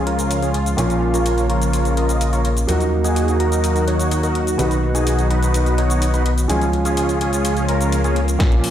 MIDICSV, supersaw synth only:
0, 0, Header, 1, 2, 480
1, 0, Start_track
1, 0, Tempo, 476190
1, 787, Time_signature, 4, 2, 24, 8
1, 8773, End_track
2, 0, Start_track
2, 0, Title_t, "Supersaw synth"
2, 0, Program_c, 0, 81
2, 67, Note_on_c, 0, 61, 93
2, 67, Note_on_c, 0, 65, 82
2, 67, Note_on_c, 0, 70, 102
2, 398, Note_off_c, 0, 61, 0
2, 398, Note_off_c, 0, 65, 0
2, 398, Note_off_c, 0, 70, 0
2, 427, Note_on_c, 0, 61, 78
2, 427, Note_on_c, 0, 65, 69
2, 427, Note_on_c, 0, 68, 87
2, 586, Note_off_c, 0, 61, 0
2, 586, Note_off_c, 0, 65, 0
2, 586, Note_off_c, 0, 68, 0
2, 787, Note_on_c, 0, 65, 83
2, 787, Note_on_c, 0, 70, 74
2, 787, Note_on_c, 0, 73, 90
2, 946, Note_off_c, 0, 65, 0
2, 946, Note_off_c, 0, 70, 0
2, 946, Note_off_c, 0, 73, 0
2, 1147, Note_on_c, 0, 73, 105
2, 1148, Note_on_c, 0, 65, 96
2, 1148, Note_on_c, 0, 70, 89
2, 1478, Note_off_c, 0, 73, 0
2, 1479, Note_off_c, 0, 65, 0
2, 1479, Note_off_c, 0, 70, 0
2, 1506, Note_on_c, 0, 65, 89
2, 1506, Note_on_c, 0, 70, 82
2, 1506, Note_on_c, 0, 73, 94
2, 1958, Note_off_c, 0, 65, 0
2, 1958, Note_off_c, 0, 70, 0
2, 1958, Note_off_c, 0, 73, 0
2, 1986, Note_on_c, 0, 65, 92
2, 1986, Note_on_c, 0, 70, 86
2, 1986, Note_on_c, 0, 75, 100
2, 2318, Note_off_c, 0, 65, 0
2, 2318, Note_off_c, 0, 70, 0
2, 2318, Note_off_c, 0, 75, 0
2, 2346, Note_on_c, 0, 65, 79
2, 2346, Note_on_c, 0, 70, 72
2, 2346, Note_on_c, 0, 73, 83
2, 2506, Note_off_c, 0, 65, 0
2, 2506, Note_off_c, 0, 70, 0
2, 2506, Note_off_c, 0, 73, 0
2, 2706, Note_on_c, 0, 63, 81
2, 2706, Note_on_c, 0, 66, 75
2, 2706, Note_on_c, 0, 70, 89
2, 2866, Note_off_c, 0, 63, 0
2, 2866, Note_off_c, 0, 66, 0
2, 2866, Note_off_c, 0, 70, 0
2, 3066, Note_on_c, 0, 68, 105
2, 3067, Note_on_c, 0, 63, 98
2, 3067, Note_on_c, 0, 66, 86
2, 3398, Note_off_c, 0, 63, 0
2, 3398, Note_off_c, 0, 66, 0
2, 3398, Note_off_c, 0, 68, 0
2, 3425, Note_on_c, 0, 63, 87
2, 3426, Note_on_c, 0, 66, 79
2, 3426, Note_on_c, 0, 70, 97
2, 3877, Note_off_c, 0, 63, 0
2, 3878, Note_off_c, 0, 66, 0
2, 3878, Note_off_c, 0, 70, 0
2, 3907, Note_on_c, 0, 63, 90
2, 3907, Note_on_c, 0, 66, 84
2, 3907, Note_on_c, 0, 73, 99
2, 4238, Note_off_c, 0, 63, 0
2, 4238, Note_off_c, 0, 66, 0
2, 4238, Note_off_c, 0, 73, 0
2, 4267, Note_on_c, 0, 63, 79
2, 4267, Note_on_c, 0, 66, 70
2, 4267, Note_on_c, 0, 70, 84
2, 4426, Note_off_c, 0, 63, 0
2, 4426, Note_off_c, 0, 66, 0
2, 4426, Note_off_c, 0, 70, 0
2, 4627, Note_on_c, 0, 63, 83
2, 4627, Note_on_c, 0, 66, 73
2, 4627, Note_on_c, 0, 71, 91
2, 4786, Note_off_c, 0, 63, 0
2, 4786, Note_off_c, 0, 66, 0
2, 4786, Note_off_c, 0, 71, 0
2, 4986, Note_on_c, 0, 63, 96
2, 4986, Note_on_c, 0, 66, 86
2, 4987, Note_on_c, 0, 68, 106
2, 5318, Note_off_c, 0, 63, 0
2, 5318, Note_off_c, 0, 66, 0
2, 5318, Note_off_c, 0, 68, 0
2, 5346, Note_on_c, 0, 66, 81
2, 5347, Note_on_c, 0, 63, 90
2, 5347, Note_on_c, 0, 71, 100
2, 5798, Note_off_c, 0, 63, 0
2, 5798, Note_off_c, 0, 66, 0
2, 5798, Note_off_c, 0, 71, 0
2, 5826, Note_on_c, 0, 63, 92
2, 5826, Note_on_c, 0, 66, 83
2, 5826, Note_on_c, 0, 73, 99
2, 6158, Note_off_c, 0, 63, 0
2, 6158, Note_off_c, 0, 66, 0
2, 6158, Note_off_c, 0, 73, 0
2, 6186, Note_on_c, 0, 63, 75
2, 6187, Note_on_c, 0, 66, 70
2, 6187, Note_on_c, 0, 71, 86
2, 6346, Note_off_c, 0, 63, 0
2, 6346, Note_off_c, 0, 66, 0
2, 6346, Note_off_c, 0, 71, 0
2, 6547, Note_on_c, 0, 61, 83
2, 6547, Note_on_c, 0, 65, 76
2, 6547, Note_on_c, 0, 68, 90
2, 6706, Note_off_c, 0, 61, 0
2, 6706, Note_off_c, 0, 65, 0
2, 6706, Note_off_c, 0, 68, 0
2, 6907, Note_on_c, 0, 61, 96
2, 6907, Note_on_c, 0, 65, 90
2, 6908, Note_on_c, 0, 68, 106
2, 7238, Note_off_c, 0, 61, 0
2, 7238, Note_off_c, 0, 65, 0
2, 7239, Note_off_c, 0, 68, 0
2, 7268, Note_on_c, 0, 61, 89
2, 7268, Note_on_c, 0, 65, 79
2, 7268, Note_on_c, 0, 68, 97
2, 7719, Note_off_c, 0, 61, 0
2, 7719, Note_off_c, 0, 65, 0
2, 7719, Note_off_c, 0, 68, 0
2, 7748, Note_on_c, 0, 61, 93
2, 7748, Note_on_c, 0, 65, 87
2, 7748, Note_on_c, 0, 70, 101
2, 8079, Note_off_c, 0, 61, 0
2, 8079, Note_off_c, 0, 65, 0
2, 8079, Note_off_c, 0, 70, 0
2, 8107, Note_on_c, 0, 61, 77
2, 8107, Note_on_c, 0, 65, 71
2, 8107, Note_on_c, 0, 68, 85
2, 8266, Note_off_c, 0, 61, 0
2, 8266, Note_off_c, 0, 65, 0
2, 8266, Note_off_c, 0, 68, 0
2, 8466, Note_on_c, 0, 65, 75
2, 8466, Note_on_c, 0, 70, 90
2, 8467, Note_on_c, 0, 61, 80
2, 8626, Note_off_c, 0, 61, 0
2, 8626, Note_off_c, 0, 65, 0
2, 8626, Note_off_c, 0, 70, 0
2, 8773, End_track
0, 0, End_of_file